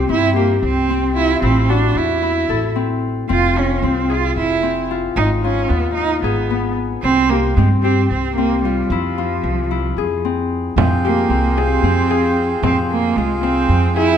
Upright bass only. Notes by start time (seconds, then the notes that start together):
0.09 G2
0.63 C2
1.42 A1
1.95 E2
2.49 A1
3.30 F1
3.83 C2
4.36 F1
5.16 G#1
5.70 D#2
6.22 G#1
7.03 C2
7.57 G2
8.10 C2
8.90 F2
9.44 C2
9.97 F2
10.76 F2
11.30 C2
11.83 F2
12.63 F2
13.16 C2
13.69 F2